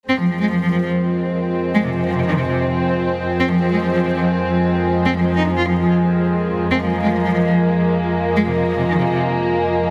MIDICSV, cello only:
0, 0, Header, 1, 2, 480
1, 0, Start_track
1, 0, Key_signature, -4, "minor"
1, 0, Tempo, 413793
1, 104, Time_signature, 4, 2, 24, 8
1, 11489, End_track
2, 0, Start_track
2, 0, Title_t, "Cello"
2, 0, Program_c, 0, 42
2, 104, Note_on_c, 0, 60, 87
2, 201, Note_off_c, 0, 60, 0
2, 226, Note_on_c, 0, 53, 62
2, 320, Note_off_c, 0, 53, 0
2, 344, Note_on_c, 0, 53, 60
2, 440, Note_off_c, 0, 53, 0
2, 465, Note_on_c, 0, 56, 79
2, 559, Note_off_c, 0, 56, 0
2, 585, Note_on_c, 0, 53, 59
2, 681, Note_off_c, 0, 53, 0
2, 706, Note_on_c, 0, 53, 88
2, 800, Note_off_c, 0, 53, 0
2, 825, Note_on_c, 0, 53, 61
2, 921, Note_off_c, 0, 53, 0
2, 947, Note_on_c, 0, 53, 62
2, 1040, Note_off_c, 0, 53, 0
2, 2026, Note_on_c, 0, 56, 89
2, 2122, Note_off_c, 0, 56, 0
2, 2148, Note_on_c, 0, 48, 59
2, 2240, Note_off_c, 0, 48, 0
2, 2265, Note_on_c, 0, 48, 60
2, 2361, Note_off_c, 0, 48, 0
2, 2387, Note_on_c, 0, 53, 79
2, 2480, Note_off_c, 0, 53, 0
2, 2505, Note_on_c, 0, 48, 60
2, 2601, Note_off_c, 0, 48, 0
2, 2627, Note_on_c, 0, 51, 91
2, 2720, Note_off_c, 0, 51, 0
2, 2744, Note_on_c, 0, 48, 60
2, 2841, Note_off_c, 0, 48, 0
2, 2866, Note_on_c, 0, 48, 61
2, 2959, Note_off_c, 0, 48, 0
2, 3945, Note_on_c, 0, 60, 93
2, 4041, Note_off_c, 0, 60, 0
2, 4067, Note_on_c, 0, 53, 60
2, 4160, Note_off_c, 0, 53, 0
2, 4184, Note_on_c, 0, 53, 63
2, 4281, Note_off_c, 0, 53, 0
2, 4307, Note_on_c, 0, 56, 85
2, 4400, Note_off_c, 0, 56, 0
2, 4425, Note_on_c, 0, 53, 61
2, 4521, Note_off_c, 0, 53, 0
2, 4547, Note_on_c, 0, 53, 88
2, 4640, Note_off_c, 0, 53, 0
2, 4664, Note_on_c, 0, 53, 60
2, 4761, Note_off_c, 0, 53, 0
2, 4787, Note_on_c, 0, 53, 66
2, 4880, Note_off_c, 0, 53, 0
2, 5864, Note_on_c, 0, 60, 92
2, 5960, Note_off_c, 0, 60, 0
2, 5986, Note_on_c, 0, 53, 61
2, 6079, Note_off_c, 0, 53, 0
2, 6104, Note_on_c, 0, 53, 59
2, 6201, Note_off_c, 0, 53, 0
2, 6225, Note_on_c, 0, 63, 82
2, 6319, Note_off_c, 0, 63, 0
2, 6344, Note_on_c, 0, 53, 61
2, 6441, Note_off_c, 0, 53, 0
2, 6466, Note_on_c, 0, 65, 90
2, 6560, Note_off_c, 0, 65, 0
2, 6586, Note_on_c, 0, 53, 63
2, 6681, Note_off_c, 0, 53, 0
2, 6709, Note_on_c, 0, 53, 62
2, 6801, Note_off_c, 0, 53, 0
2, 7785, Note_on_c, 0, 60, 89
2, 7881, Note_off_c, 0, 60, 0
2, 7907, Note_on_c, 0, 53, 64
2, 8000, Note_off_c, 0, 53, 0
2, 8026, Note_on_c, 0, 53, 60
2, 8122, Note_off_c, 0, 53, 0
2, 8147, Note_on_c, 0, 56, 82
2, 8240, Note_off_c, 0, 56, 0
2, 8266, Note_on_c, 0, 53, 59
2, 8362, Note_off_c, 0, 53, 0
2, 8387, Note_on_c, 0, 53, 92
2, 8480, Note_off_c, 0, 53, 0
2, 8507, Note_on_c, 0, 53, 62
2, 8602, Note_off_c, 0, 53, 0
2, 8628, Note_on_c, 0, 53, 65
2, 8720, Note_off_c, 0, 53, 0
2, 9704, Note_on_c, 0, 56, 91
2, 9801, Note_off_c, 0, 56, 0
2, 9827, Note_on_c, 0, 48, 61
2, 9920, Note_off_c, 0, 48, 0
2, 9944, Note_on_c, 0, 48, 60
2, 10041, Note_off_c, 0, 48, 0
2, 10066, Note_on_c, 0, 53, 79
2, 10160, Note_off_c, 0, 53, 0
2, 10184, Note_on_c, 0, 48, 59
2, 10281, Note_off_c, 0, 48, 0
2, 10307, Note_on_c, 0, 51, 90
2, 10400, Note_off_c, 0, 51, 0
2, 10426, Note_on_c, 0, 48, 61
2, 10522, Note_off_c, 0, 48, 0
2, 10548, Note_on_c, 0, 48, 64
2, 10640, Note_off_c, 0, 48, 0
2, 11489, End_track
0, 0, End_of_file